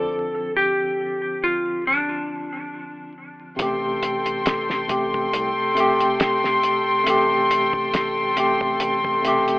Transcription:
Already playing: D2 D3 F3 C4 A4
0.57 G4
1.44 F4
1.87 D4
3.56 A1 C3 A3 A4 G5 C6, kick, closed hi-hat
3.62 G4
4.03 closed hi-hat
4.26 closed hi-hat
4.46 snare, closed hi-hat
4.70 snare
4.88 C3 A3 G4, kick, closed hi-hat
5.14 kick
5.33 C2, closed hi-hat
5.74 C3 A3, closed hi-hat
5.80 G4
6.00 closed hi-hat
6.20 snare, closed hi-hat
6.44 snare
6.63 closed hi-hat
7.04 A1 C3 A3, closed hi-hat
7.10 G4
7.51 closed hi-hat
7.73 kick
7.94 snare, closed hi-hat
8.36 C3 A3 G4, closed hi-hat
8.61 kick
8.80 A1, closed hi-hat
9.04 kick
9.22 C3 A3, closed hi-hat
9.27 G4
9.48 closed hi-hat

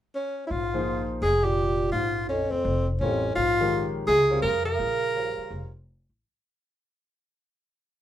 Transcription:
0.15 C#4
0.47 A#1 E4
0.51 G#2 F4
0.74 F3 A#3 D#4 G#4 C5
1.22 F1 C3 G#4
1.43 A#2 G4
1.92 A#1 G#2 F4
2.29 F2 C#4
2.51 F2 C4, muted upright bass stroke
2.65 F1
2.99 A1 F2 G3 C4 C#4 F4 A#4 C#5
3.35 A#1 G#2 F4
3.60 D#3 G#3 C#4 G4 A#4
4.06 C#2 C3 G#4
4.30 G3 C4 F4 A#4 C#5
4.40 F2 C3 C#3 A#4
4.65 C#3 A#4
4.79 A#1
5.15 G3 F4 A#4 C5 C#5
5.37 muted upright bass stroke
5.51 F1
6.09 A1

